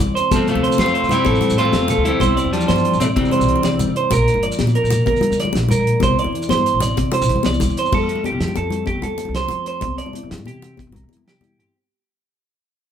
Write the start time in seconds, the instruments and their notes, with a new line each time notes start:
Already playing: clean electric guitar E3 C4 E4 G4 D5
0.00 clean electric guitar G2, closed hi-hat, shekere
0.07 upright bass E2
0.15 clean electric guitar C4 C5, closed hi-hat, shekere
0.31 upright bass F2, clean electric guitar F2 F3 A4, kick, closed hi-hat, high conga, low conga, shekere
0.36 alto saxophone A3, clean electric guitar C4
0.47 clean electric guitar C3 A3 C4, alto saxophone F3, closed hi-hat, shekere
0.55 upright bass D2, low conga
0.63 clean electric guitar F3 C5, closed hi-hat
0.72 shekere
0.78 upright bass F3, clean electric guitar A3 F4, alto saxophone C4, snare, closed hi-hat, high conga
0.86 low conga, shekere
0.94 clean electric guitar C3 C5, closed hi-hat
1.03 upright bass F3, shekere
1.09 clean electric guitar G3 A3 E4, alto saxophone C4, closed hi-hat, low conga, shekere
1.25 clean electric guitar F2 A4, upright bass A2, kick, closed hi-hat, high conga
1.33 low conga, shekere
1.41 clean electric guitar C4, closed hi-hat, low conga
1.50 upright bass A2, shekere
1.58 clean electric guitar F3 A3 F4 C5, alto saxophone C4, closed hi-hat
1.65 low conga
1.73 upright bass F2, snare, closed hi-hat, high conga, low conga
1.88 clean electric guitar C3 A4, closed hi-hat, low conga, shekere
1.98 upright bass D2
2.05 clean electric guitar G3 A3 E4, alto saxophone C4, closed hi-hat
2.20 upright bass C2, clean electric guitar C3 C5, kick, closed hi-hat, high conga, low conga, shekere
2.37 clean electric guitar D5, closed hi-hat, shekere
2.44 upright bass E2, low conga
2.53 clean electric guitar E3 F3 D4, alto saxophone G3, closed hi-hat
2.61 shekere
2.68 upright bass G2, clean electric guitar C5, snare, closed hi-hat, high conga
2.76 low conga, shekere
2.85 clean electric guitar G2, closed hi-hat
2.93 upright bass A1, shekere
3.00 clean electric guitar E3 C4 D5, alto saxophone A3, closed hi-hat, low conga, shekere
3.16 clean electric guitar C3 E3 C4, upright bass C3, alto saxophone G3, kick, closed hi-hat, high conga
3.24 low conga, shekere
3.31 clean electric guitar E4 C5, closed hi-hat, low conga
3.40 upright bass C2, shekere
3.48 clean electric guitar E3, closed hi-hat
3.56 low conga
3.63 upright bass C2, clean electric guitar D5, snare, closed hi-hat, high conga, low conga
3.79 clean electric guitar G2, closed hi-hat, low conga, shekere
3.87 upright bass C3
3.96 clean electric guitar C4 C5, closed hi-hat
4.11 upright bass A#1, clean electric guitar A#2 A#4, kick, closed hi-hat, high conga, low conga, shekere
4.28 clean electric guitar D4, closed hi-hat, shekere
4.34 upright bass G1, low conga
4.43 clean electric guitar F3 D5, closed hi-hat
4.52 shekere
4.59 upright bass A#2, snare, closed hi-hat, high conga
4.67 low conga, shekere
4.74 clean electric guitar F2 A#4, closed hi-hat
4.84 upright bass A#2, shekere
4.90 clean electric guitar A#3, closed hi-hat, low conga, shekere
5.06 upright bass D2, clean electric guitar A#2 A#4, kick, closed hi-hat, high conga
5.13 low conga, shekere
5.21 clean electric guitar D4, closed hi-hat, low conga
5.30 upright bass D2, shekere
5.38 clean electric guitar F3 D5, snare, closed hi-hat
5.45 low conga
5.53 upright bass A#1, muted clean electric guitar stroke, snare, closed hi-hat, high conga, low conga
5.69 clean electric guitar A2 A#4, closed hi-hat, low conga, shekere
5.79 upright bass A#1
5.87 clean electric guitar A#2, closed hi-hat
6.00 upright bass C2, clean electric guitar C3 C5, kick, closed hi-hat, high conga, low conga, shekere
6.19 clean electric guitar E4 D5, closed hi-hat
6.24 upright bass E2, low conga
6.33 clean electric guitar E3, closed hi-hat, low conga
6.41 low conga, shekere
6.49 upright bass G2, clean electric guitar C5, snare, closed hi-hat, high conga, low conga
6.57 low conga
6.66 clean electric guitar G2, closed hi-hat, shekere
6.73 upright bass A1
6.80 clean electric guitar C4 D5, closed hi-hat, low conga, shekere
6.96 clean electric guitar C3, upright bass C3, kick, closed hi-hat, high conga, shekere
7.05 low conga
7.11 clean electric guitar E4 C5, closed hi-hat, low conga
7.21 upright bass C2, shekere
7.28 clean electric guitar E3, kick, snare, closed hi-hat
7.36 low conga
7.43 upright bass C2, clean electric guitar D5, snare, closed hi-hat, high conga, low conga
7.53 low conga, shekere
7.60 clean electric guitar G2, kick, closed hi-hat, low conga, shekere
7.69 upright bass E2, low conga, shekere
7.76 clean electric guitar C4 C5, closed hi-hat, shekere
7.86 shekere
7.92 clean electric guitar F2 A3 A4, upright bass F2, kick, crash, high conga, low conga
8.08 clean electric guitar A4, closed hi-hat
8.15 low conga
8.24 clean electric guitar C4 G4, closed hi-hat, high conga
8.32 upright bass C2, low conga
8.40 upright bass F2, clean electric guitar F3 A4, snare, closed hi-hat
8.48 low conga
8.56 upright bass F2, clean electric guitar C4 A4, closed hi-hat, high conga, low conga
8.70 clean electric guitar A3, closed hi-hat, low conga
8.86 clean electric guitar F2 A3 G4, kick, closed hi-hat, high conga
8.95 upright bass C2
9.02 upright bass F2, clean electric guitar A4, closed hi-hat, low conga
9.10 low conga
9.18 clean electric guitar C4, closed hi-hat, high conga
9.25 upright bass C2, low conga
9.34 clean electric guitar F3 A4 C5, snare, closed hi-hat
9.48 upright bass F3, clean electric guitar C4, closed hi-hat, high conga, low conga
9.65 clean electric guitar A3 C5, closed hi-hat
9.81 upright bass C2, clean electric guitar C3 C4, kick, closed hi-hat, high conga, low conga
9.98 clean electric guitar A4 D5, closed hi-hat
10.06 low conga
10.13 clean electric guitar E4, closed hi-hat, high conga
10.22 upright bass C2, low conga
10.29 upright bass G2, clean electric guitar E3 F4, snare, closed hi-hat
10.38 clean electric guitar G4, low conga
10.46 upright bass C3, clean electric guitar E4 G4, closed hi-hat, high conga, low conga
10.62 clean electric guitar C4, closed hi-hat, low conga
10.77 clean electric guitar C3, muted clean electric guitar stroke, kick, closed hi-hat, high conga
10.87 upright bass A1
10.92 upright bass C2, clean electric guitar A#4, closed hi-hat, low conga
11.01 upright bass C3, low conga
11.09 clean electric guitar E4, closed hi-hat, high conga
11.17 low conga
11.24 clean electric guitar E3 G4, snare, closed hi-hat
11.41 clean electric guitar E4, closed hi-hat, high conga, low conga
11.59 upright bass G2, clean electric guitar C4 G4, closed hi-hat